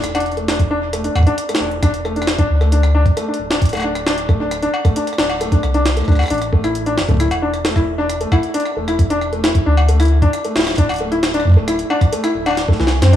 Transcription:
Already playing: E1
0.01 cross-stick, snare, closed hi-hat
0.15 D4, closed hi-hat, cowbell
0.20 closed hi-hat
0.26 closed hi-hat
0.32 closed hi-hat
0.37 A3, closed hi-hat
0.48 D4, snare, closed hi-hat
0.59 kick, closed hi-hat
0.71 D4
0.93 A3, cross-stick, closed hi-hat
1.04 D4, closed hi-hat
1.15 kick, cross-stick, cowbell
1.19 kick
1.23 D4, kick, closed hi-hat
1.38 closed hi-hat
1.49 A3, cross-stick, closed hi-hat
1.55 snare
1.60 E1 D4
1.71 closed hi-hat
1.83 D4, kick, cross-stick, closed hi-hat
1.94 closed hi-hat
2.05 A3, cross-stick
2.16 D4, closed hi-hat
2.22 cross-stick
2.27 snare, closed hi-hat
2.38 D4, kick, closed hi-hat
2.50 D2
2.61 A3, cross-stick
2.72 D4, closed hi-hat
2.83 cross-stick
2.95 D4
3.06 kick, closed hi-hat
3.17 A3, cross-stick, closed hi-hat
3.28 D4
3.34 closed hi-hat
3.39 D1
3.51 D4, snare, closed hi-hat
3.62 kick, closed hi-hat
3.65 closed hi-hat
3.69 cross-stick, closed hi-hat
3.73 A3, cross-stick, closed hi-hat, cowbell
3.75 cross-stick, closed hi-hat, cowbell
3.77 cross-stick, cowbell
3.80 cross-stick, cowbell
3.82 D4, cowbell
3.95 cross-stick, closed hi-hat
4.06 D4, snare
4.18 closed hi-hat
4.29 A3, kick, cross-stick
4.40 D4
4.51 cross-stick, closed hi-hat
4.62 D4, closed hi-hat
4.74 cowbell
4.85 A3, kick, cross-stick, closed hi-hat
4.96 D4, closed hi-hat
5.07 cross-stick, closed hi-hat
5.13 cross-stick
5.18 D1 D4, cross-stick, snare
5.24 cross-stick
5.30 closed hi-hat, cowbell
5.41 A3, cross-stick, closed hi-hat
5.52 D4, kick, closed hi-hat
5.63 C2, cross-stick
5.74 D4, closed hi-hat
5.86 snare, closed hi-hat
5.97 A3, cross-stick, closed hi-hat
6.00 cross-stick
6.04 D2 D4, kick, cross-stick
6.08 cross-stick
6.12 cross-stick
6.15 cross-stick
6.19 cross-stick, closed hi-hat, cowbell
6.21 cross-stick, closed hi-hat
6.24 cross-stick
6.26 cross-stick, closed hi-hat
6.28 A1 D4, cross-stick, closed hi-hat
6.34 closed hi-hat
6.38 cross-stick, closed hi-hat
6.42 closed hi-hat
6.53 A3, kick
6.64 E4, cross-stick, closed hi-hat
6.75 closed hi-hat
6.86 D4, closed hi-hat
6.97 E1, cross-stick, snare
7.09 A3, kick, closed hi-hat
7.11 kick
7.14 kick
7.17 kick
7.20 E4, kick, cross-stick, closed hi-hat
7.23 kick
7.25 kick
7.28 kick, closed hi-hat, cowbell
7.42 D4
7.54 cross-stick, closed hi-hat
7.65 A3, snare, closed hi-hat
7.76 E4, kick, cross-stick
7.98 D4
8.09 cross-stick, closed hi-hat
8.21 A3, closed hi-hat
8.32 E4, kick, cross-stick, cowbell
8.43 closed hi-hat
8.54 D4, closed hi-hat
8.60 closed hi-hat
8.65 cross-stick
8.77 E1 A3
8.88 E4, cross-stick, closed hi-hat
8.99 kick, closed hi-hat
9.10 D4, closed hi-hat
9.21 cross-stick
9.33 A3, closed hi-hat
9.44 E4, cross-stick, snare, closed hi-hat
9.55 kick, closed hi-hat
9.66 D2 D4
9.77 cross-stick, cowbell
9.88 A3, closed hi-hat
10.00 E4, cross-stick, closed hi-hat
10.03 closed hi-hat
10.05 closed hi-hat
10.08 closed hi-hat
10.22 D4, kick, closed hi-hat
10.33 cross-stick, closed hi-hat
10.44 A3, closed hi-hat
10.56 D1 E4, snare
10.59 snare
10.63 cross-stick, snare
10.67 snare, closed hi-hat
10.71 snare
10.74 D4, kick, snare, closed hi-hat
10.89 cross-stick, closed hi-hat, cowbell
10.92 closed hi-hat
10.94 closed hi-hat
10.96 closed hi-hat
10.98 A3, closed hi-hat
11.12 E4, closed hi-hat
11.23 snare, closed hi-hat
11.34 D4, closed hi-hat
11.40 cross-stick
11.45 kick
11.47 kick
11.50 kick
11.52 kick
11.54 A3, kick
11.68 E4, cross-stick, closed hi-hat
11.79 closed hi-hat
11.90 D4, cowbell
12.01 kick, cross-stick, closed hi-hat
12.12 A3, closed hi-hat
12.24 E4, cross-stick, closed hi-hat
12.35 D1
12.46 D4, closed hi-hat, cowbell
12.48 cowbell
12.51 cowbell
12.53 cowbell
12.55 snare, closed hi-hat, cowbell
12.68 A3, kick, snare
12.80 C2 E3, snare
12.87 snare
13.02 F#2 C4, snare, closed hi-hat
13.13 D4, closed hi-hat

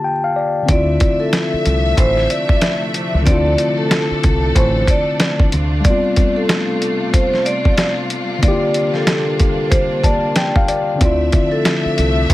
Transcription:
Already playing: D3 A#3 F4 G4 A5
0.04 G5
0.24 F5
0.36 D5
0.63 D3 C4
0.68 D2 C3 F3 A3 D4 E4 F4 D5 E5, kick, closed hi-hat
1.00 kick, closed hi-hat
1.20 A4
1.33 snare, closed hi-hat
1.53 muted fingered electric bass stroke
1.65 C2, closed hi-hat
1.97 A1 C5, kick, closed hi-hat
2.17 snare
2.30 D5, closed hi-hat
2.49 kick
2.61 snare, closed hi-hat
2.94 closed hi-hat
3.14 C#2
3.22 D3 C4 D5
3.26 D2 E4 A4, kick, closed hi-hat
3.32 F4
3.58 closed hi-hat
3.78 A4
3.91 snare, closed hi-hat
4.11 muted fingered electric bass stroke
4.24 C2, kick, closed hi-hat
4.56 A1 C5, kick, closed hi-hat
4.87 D5, kick, closed hi-hat
5.20 snare, closed hi-hat
5.40 kick
5.52 D2 C3 G3 A3 F4, closed hi-hat
5.81 G3 D5
5.85 B3, kick, closed hi-hat
5.90 C4 F4
6.16 kick, closed hi-hat
6.36 A4
6.49 snare, closed hi-hat
6.82 closed hi-hat
7.13 C5, kick, closed hi-hat
7.33 snare
7.45 D5, closed hi-hat
7.65 kick
7.78 snare, closed hi-hat
8.10 closed hi-hat
8.38 D3 A#3
8.43 A#3 D4 E4 D5, kick, closed hi-hat
8.48 F4 G4
8.74 closed hi-hat
8.94 A4, snare
9.07 snare, closed hi-hat
9.40 kick, closed hi-hat
9.70 C5, kick, closed hi-hat
10.04 D5 A5, kick, closed hi-hat
10.36 G5, snare, closed hi-hat
10.56 F5, kick
10.68 D5, closed hi-hat
10.95 D3 C4
11.01 D2 C3 F3 A3 D4 E4 F4 D5 E5, kick, closed hi-hat
11.32 kick, closed hi-hat
11.52 A4
11.65 snare, closed hi-hat
11.85 muted fingered electric bass stroke
11.98 C2, closed hi-hat
12.30 A1, kick, closed hi-hat

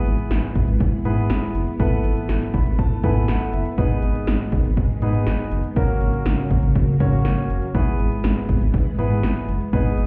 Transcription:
Already playing: E3 G#3 B3 E4 G#4 B4
0.06 G#1, closed hi-hat
0.19 closed hi-hat
0.31 G#1, snare, closed hi-hat
0.55 G#1, kick, closed hi-hat
0.68 G#1, closed hi-hat
0.80 G#1, kick, closed hi-hat
1.05 G#2 B3 E4 G#4 B4, closed hi-hat
1.18 closed hi-hat
1.30 G#1, snare, closed hi-hat
1.55 F#1, closed hi-hat
1.67 closed hi-hat
1.79 G#1 A3 B3 E4 A4 B4, kick, closed hi-hat
2.04 G#1, closed hi-hat
2.17 closed hi-hat
2.29 G#1, snare, closed hi-hat
2.54 G#1 B5, kick, closed hi-hat
2.66 G#1, closed hi-hat
2.79 G#1 A5, kick, closed hi-hat
3.03 G#2 B3 E4 A4 B4 G#5, kick, closed hi-hat
3.16 closed hi-hat
3.28 G#1 F#5, snare, closed hi-hat
3.53 F#1 E5, closed hi-hat
3.65 closed hi-hat
3.78 G#1 D#3 G#3 B3 D#4 G#4 B4, kick, closed hi-hat
4.02 G#1, closed hi-hat
4.15 closed hi-hat
4.27 G#1, snare, closed hi-hat
4.52 G#1, kick, closed hi-hat
4.64 G#1, closed hi-hat
4.77 G#1, kick, closed hi-hat
5.02 G#2 B3 D#4 G#4 B4, closed hi-hat
5.14 closed hi-hat
5.27 G#1, snare, closed hi-hat
5.51 F#1, closed hi-hat
5.64 closed hi-hat
5.76 G#1 C#3 F#3 A#3 C#4 F#4 A#4, kick, closed hi-hat
6.01 G#1, closed hi-hat
6.14 closed hi-hat
6.26 G#1, snare, closed hi-hat
6.50 G#1, kick, closed hi-hat
6.63 G#1, closed hi-hat
6.75 G#1, kick, closed hi-hat
7.00 G#2 A#3 C#4 F#4 C#5, kick, closed hi-hat
7.13 closed hi-hat
7.25 G#1, snare, closed hi-hat
7.50 F#1, closed hi-hat
7.62 closed hi-hat
7.74 G#1 E3 G#3 B3 E4 G#4 B4, kick, closed hi-hat
7.99 G#1, closed hi-hat
8.12 closed hi-hat
8.24 G#1, snare, closed hi-hat
8.49 G#1, kick, closed hi-hat
8.61 G#1, closed hi-hat
8.74 G#1, kick, closed hi-hat
8.98 G#2 B3 E4 G#4 B4, closed hi-hat
9.11 closed hi-hat
9.23 G#1, snare, closed hi-hat
9.48 F#1, closed hi-hat
9.61 closed hi-hat
9.73 G#1 D#3 G#3 B3 D#4 G#4 B4, kick, closed hi-hat
9.98 G#1, closed hi-hat

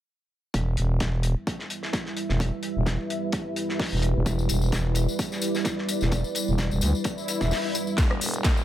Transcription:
0.54 E1 G3 E4 B4 E5, kick, closed hi-hat
0.77 E1, closed hi-hat
1.00 E1, kick, snare, closed hi-hat
1.23 closed hi-hat
1.47 kick, closed hi-hat
1.59 snare
1.70 closed hi-hat
1.83 snare
1.93 kick, snare, closed hi-hat
2.06 snare
2.17 closed hi-hat
2.29 E1, snare
2.40 kick, closed hi-hat
2.63 closed hi-hat
2.76 E1
2.86 kick, snare, closed hi-hat
3.10 closed hi-hat
3.32 kick, closed hi-hat
3.56 closed hi-hat
3.69 snare
3.80 kick, snare, open hi-hat
3.92 E1
4.02 closed hi-hat
4.15 E1
4.26 E1 D5, kick, closed hi-hat, tambourine
4.39 tambourine
4.49 E1, closed hi-hat, tambourine
4.62 tambourine
4.72 E1, kick, snare, closed hi-hat, tambourine
4.95 closed hi-hat, tambourine
5.08 tambourine
5.19 kick, closed hi-hat, tambourine
5.32 snare, tambourine
5.42 closed hi-hat, tambourine
5.55 snare, tambourine
5.65 kick, snare, closed hi-hat, tambourine
5.78 snare
5.89 closed hi-hat, tambourine
6.01 E1, snare, tambourine
6.12 kick, closed hi-hat, tambourine
6.24 tambourine
6.35 closed hi-hat, tambourine
6.48 E1, tambourine
6.58 kick, snare, closed hi-hat, tambourine
6.71 E1, tambourine
6.81 D2, closed hi-hat, tambourine
6.95 tambourine
7.04 kick, closed hi-hat, tambourine, swell
7.18 tambourine
7.28 closed hi-hat, tambourine
7.40 E1, kick, snare, tambourine
7.51 snare, open hi-hat, tambourine
7.75 closed hi-hat, tambourine
7.87 tambourine
7.98 E1 G3 E4 B4 E5, kick, snare, closed hi-hat, tambourine, riser
8.11 cross-stick
8.21 E1, closed hi-hat, open hi-hat, tambourine
8.34 closed hi-hat, tambourine
8.44 E1, kick, snare, closed hi-hat, tambourine
8.57 tambourine

